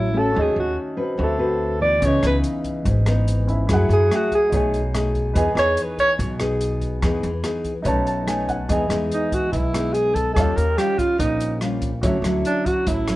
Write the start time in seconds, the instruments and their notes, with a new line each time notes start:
Already playing: upright bass A1, nylon-string guitar A2 F#3 C#4 E4, alto saxophone E4, grand piano F#4 C#5 E5
0.14 nylon-string guitar A3 C#4 F#4
0.18 alto saxophone A4
0.32 nylon-string guitar D#3, grand piano C#4 F#4
0.36 upright bass D#2, grand piano A4 D#5
0.41 alto saxophone G#4
0.56 upright bass D#2, alto saxophone F#4
0.97 nylon-string guitar C4 F#4 B4
1.17 upright bass D2, nylon-string guitar D3, grand piano C4 F#4 B4
1.23 alto saxophone A4, grand piano E5
1.39 nylon-string guitar C4 F#4 B4
1.81 nylon-string guitar E3 B3 D#4, alto saxophone D5
2.00 upright bass C#2, nylon-string guitar C#3, grand piano C#4 B4, kick, closed hi-hat
2.06 alto saxophone C#5, grand piano D#5
2.23 upright bass C#2, nylon-string guitar E3 B3 D#4, alto saxophone B4, cross-stick, closed hi-hat
2.44 closed hi-hat
2.65 kick, closed hi-hat
2.86 upright bass G#1, nylon-string guitar G#2, kick, closed hi-hat
3.06 nylon-string guitar E3 B3 D#4, cross-stick, closed hi-hat
3.28 closed hi-hat
3.47 grand piano C#4 E4 B4 E5, kick, closed hi-hat
3.67 upright bass F#2, nylon-string guitar F#3 A3 E4 G#4, grand piano E4 G#4, kick, cross-stick, closed hi-hat
3.73 grand piano F#5
3.89 upright bass F#2, alto saxophone G#4, closed hi-hat
4.11 nylon-string guitar A3 E4 G#4, cross-stick, closed hi-hat
4.16 alto saxophone F#4
4.32 alto saxophone G#4, kick, closed hi-hat
4.49 upright bass B1, nylon-string guitar B2 A3 D#4, grand piano D#4, kick, closed hi-hat
4.54 nylon-string guitar G#4, grand piano C#5 G#5
4.74 closed hi-hat
4.94 nylon-string guitar A3 D#4 G#4, cross-stick, closed hi-hat
5.15 kick, closed hi-hat
5.34 upright bass E2, nylon-string guitar E3 B3 D#4 G#4, grand piano B4 D#5 G#5, kick, closed hi-hat
5.55 upright bass E2, nylon-string guitar B3 D#4 G#4, alto saxophone C#5, cross-stick, closed hi-hat
5.77 closed hi-hat
5.83 alto saxophone B4
5.98 alto saxophone C#5, kick, closed hi-hat
6.18 upright bass B1, nylon-string guitar B2, kick, closed hi-hat
6.40 nylon-string guitar B3 D#4 G#4, cross-stick, closed hi-hat
6.61 closed hi-hat
6.81 kick, closed hi-hat
7.02 upright bass E2, nylon-string guitar E3 B3 D#4 G#4, kick, cross-stick, closed hi-hat
7.23 upright bass E2, closed hi-hat
7.43 nylon-string guitar B3 D#4 G#4, cross-stick, closed hi-hat
7.65 kick, closed hi-hat
7.83 upright bass B1, nylon-string guitar B2 A3 C#4 D#4, grand piano D#4 B4 C#5, kick, closed hi-hat
7.88 grand piano A5
8.07 grand piano A5, closed hi-hat
8.26 nylon-string guitar A3 C#4 D#4, grand piano G#5, cross-stick, closed hi-hat
8.48 grand piano F#5, kick, closed hi-hat
8.68 upright bass E2, nylon-string guitar E3 G#3 B3 D#4, grand piano B4 D#5 G#5, kick, closed hi-hat
8.89 upright bass E2, nylon-string guitar G#3 B3 D#4, cross-stick, closed hi-hat
9.11 alto saxophone D#4, closed hi-hat
9.32 alto saxophone F#4, kick, closed hi-hat
9.51 upright bass B1, nylon-string guitar B2, alto saxophone E4, kick, closed hi-hat
9.73 nylon-string guitar G#3 B3 D#4, cross-stick, closed hi-hat
9.93 alto saxophone G#4, closed hi-hat
10.14 alto saxophone A4, kick, closed hi-hat
10.33 upright bass D#2, nylon-string guitar D#3 G3 C#4 F4, grand piano D#4 G4, alto saxophone A4, kick, cross-stick, closed hi-hat
10.37 grand piano C#5 F5
10.57 upright bass D#2, alto saxophone A#4, closed hi-hat
10.77 nylon-string guitar G3 C#4 F4, alto saxophone G4, cross-stick, closed hi-hat
10.99 alto saxophone F4, kick, closed hi-hat
11.18 upright bass A#1, nylon-string guitar A#2, alto saxophone D#4, kick, closed hi-hat
11.40 closed hi-hat
11.61 nylon-string guitar G3 C#4 F4, cross-stick, closed hi-hat
11.82 kick, closed hi-hat
12.02 upright bass D2, nylon-string guitar D3 F#3 C#4 E4, grand piano F#4 C#5 E5, kick, closed hi-hat
12.22 upright bass D2, nylon-string guitar F#3 C#4 E4, cross-stick, closed hi-hat
12.45 alto saxophone D4, closed hi-hat
12.66 alto saxophone F#4, kick, closed hi-hat
12.87 upright bass A1, nylon-string guitar A2, alto saxophone E4, kick, closed hi-hat
13.07 nylon-string guitar F#3 C#4 E4, cross-stick, closed hi-hat